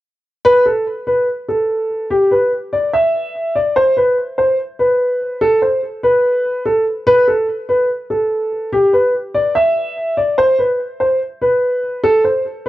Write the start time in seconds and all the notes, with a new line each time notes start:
0.45 B4
0.66 A4
1.07 B4
1.48 A4
2.10 G4
2.31 B4
2.72 D5
2.93 E5
3.55 D5
3.76 C5
3.97 B4
4.38 C5
4.79 B4
5.41 A4
5.62 C5
6.03 B4
6.65 A4
7.07 B4
7.28 A4
7.69 B4
8.10 A4
8.72 G4
8.93 B4
9.35 D5
9.55 E5
10.17 D5
10.38 C5
10.59 B4
11.00 C5
11.41 B4
12.03 A4
12.24 C5
12.66 B4